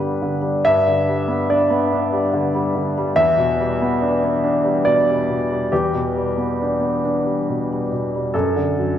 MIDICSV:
0, 0, Header, 1, 2, 480
1, 0, Start_track
1, 0, Tempo, 874636
1, 357, Time_signature, 3, 2, 24, 8
1, 829, Tempo, 839161
1, 3229, Tempo, 878477
1, 5020, End_track
2, 0, Start_track
2, 0, Title_t, "Grand piano"
2, 0, Program_c, 0, 0
2, 0, Control_c, 0, 64, 127
2, 0, Note_on_c, 0, 43, 46
2, 0, Note_on_c, 0, 50, 40
2, 0, Note_on_c, 0, 55, 41
2, 0, Note_on_c, 0, 59, 41
2, 0, Note_on_c, 0, 62, 45
2, 0, Note_on_c, 0, 67, 59
2, 0, Note_on_c, 0, 71, 69
2, 68, Note_off_c, 0, 50, 0
2, 121, Note_on_c, 0, 50, 41
2, 188, Note_off_c, 0, 55, 0
2, 229, Note_on_c, 0, 55, 40
2, 313, Note_off_c, 0, 50, 0
2, 340, Note_off_c, 0, 43, 0
2, 351, Note_off_c, 0, 71, 0
2, 355, Note_on_c, 0, 76, 87
2, 361, Note_on_c, 0, 43, 56
2, 368, Note_off_c, 0, 59, 0
2, 368, Control_c, 0, 64, 0
2, 369, Note_off_c, 0, 67, 0
2, 370, Note_off_c, 0, 62, 0
2, 427, Note_off_c, 0, 55, 0
2, 455, Control_c, 0, 64, 127
2, 480, Note_on_c, 0, 50, 41
2, 597, Note_on_c, 0, 55, 43
2, 667, Note_off_c, 0, 50, 0
2, 702, Note_on_c, 0, 59, 43
2, 783, Note_off_c, 0, 55, 0
2, 823, Note_on_c, 0, 62, 48
2, 823, Note_on_c, 0, 74, 60
2, 828, Note_off_c, 0, 76, 0
2, 896, Note_off_c, 0, 59, 0
2, 939, Note_on_c, 0, 59, 48
2, 1018, Note_off_c, 0, 62, 0
2, 1066, Note_on_c, 0, 62, 52
2, 1136, Note_off_c, 0, 59, 0
2, 1180, Note_on_c, 0, 55, 45
2, 1260, Note_off_c, 0, 62, 0
2, 1300, Note_on_c, 0, 50, 45
2, 1377, Note_off_c, 0, 55, 0
2, 1420, Note_on_c, 0, 55, 47
2, 1497, Note_off_c, 0, 50, 0
2, 1541, Note_on_c, 0, 50, 43
2, 1546, Note_off_c, 0, 74, 0
2, 1616, Note_off_c, 0, 55, 0
2, 1669, Note_on_c, 0, 55, 50
2, 1735, Note_off_c, 0, 50, 0
2, 1766, Note_off_c, 0, 43, 0
2, 1772, Note_on_c, 0, 76, 87
2, 1774, Note_on_c, 0, 40, 58
2, 1787, Note_off_c, 0, 55, 0
2, 1797, Control_c, 0, 64, 0
2, 1881, Control_c, 0, 64, 127
2, 1897, Note_on_c, 0, 47, 47
2, 2020, Note_on_c, 0, 55, 39
2, 2091, Note_off_c, 0, 47, 0
2, 2148, Note_on_c, 0, 59, 51
2, 2212, Note_off_c, 0, 55, 0
2, 2263, Note_on_c, 0, 62, 48
2, 2336, Note_off_c, 0, 59, 0
2, 2389, Note_on_c, 0, 59, 45
2, 2454, Note_off_c, 0, 62, 0
2, 2505, Note_on_c, 0, 62, 53
2, 2577, Note_off_c, 0, 59, 0
2, 2619, Note_on_c, 0, 55, 44
2, 2695, Note_off_c, 0, 62, 0
2, 2734, Note_off_c, 0, 76, 0
2, 2739, Note_on_c, 0, 74, 79
2, 2744, Note_on_c, 0, 47, 39
2, 2813, Note_off_c, 0, 55, 0
2, 2873, Note_on_c, 0, 55, 39
2, 2936, Note_off_c, 0, 47, 0
2, 2994, Note_on_c, 0, 47, 36
2, 3062, Note_off_c, 0, 55, 0
2, 3116, Note_on_c, 0, 55, 35
2, 3185, Note_off_c, 0, 47, 0
2, 3200, Note_off_c, 0, 40, 0
2, 3228, Note_off_c, 0, 74, 0
2, 3236, Note_on_c, 0, 67, 61
2, 3239, Control_c, 0, 64, 0
2, 3240, Note_on_c, 0, 40, 52
2, 3306, Note_off_c, 0, 55, 0
2, 3344, Control_c, 0, 64, 127
2, 3357, Note_on_c, 0, 47, 40
2, 3474, Note_on_c, 0, 55, 39
2, 3545, Note_off_c, 0, 47, 0
2, 3595, Note_on_c, 0, 59, 43
2, 3664, Note_off_c, 0, 55, 0
2, 3727, Note_on_c, 0, 62, 41
2, 3785, Note_off_c, 0, 59, 0
2, 3827, Note_on_c, 0, 59, 39
2, 3910, Note_off_c, 0, 62, 0
2, 3965, Note_on_c, 0, 62, 44
2, 4020, Note_off_c, 0, 59, 0
2, 4076, Note_on_c, 0, 55, 32
2, 4148, Note_off_c, 0, 62, 0
2, 4203, Note_on_c, 0, 47, 37
2, 4263, Note_off_c, 0, 55, 0
2, 4334, Note_on_c, 0, 55, 38
2, 4386, Note_off_c, 0, 47, 0
2, 4429, Note_off_c, 0, 67, 0
2, 4439, Note_on_c, 0, 47, 35
2, 4511, Note_off_c, 0, 55, 0
2, 4563, Note_on_c, 0, 55, 39
2, 4623, Note_off_c, 0, 47, 0
2, 4647, Note_off_c, 0, 40, 0
2, 4667, Note_on_c, 0, 69, 62
2, 4671, Note_on_c, 0, 42, 52
2, 4673, Note_off_c, 0, 55, 0
2, 4674, Control_c, 0, 64, 0
2, 4782, Control_c, 0, 64, 127
2, 4789, Note_on_c, 0, 50, 41
2, 4913, Note_on_c, 0, 54, 36
2, 4984, Note_off_c, 0, 50, 0
2, 5020, Note_off_c, 0, 42, 0
2, 5020, Note_off_c, 0, 54, 0
2, 5020, Note_off_c, 0, 69, 0
2, 5020, End_track
0, 0, End_of_file